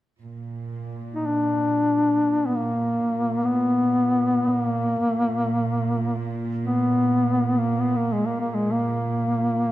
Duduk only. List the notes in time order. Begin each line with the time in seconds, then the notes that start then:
1.15 D#4
1.26 D4
2.46 B3
2.56 A#3
3.44 B3
4.49 B3
4.62 A#3
6.64 B3
7.59 A#3
7.80 B3
7.96 A#3
8.12 G#3
8.27 A#3
8.40 A#3
8.51 G#3 A#3
8.71 A#3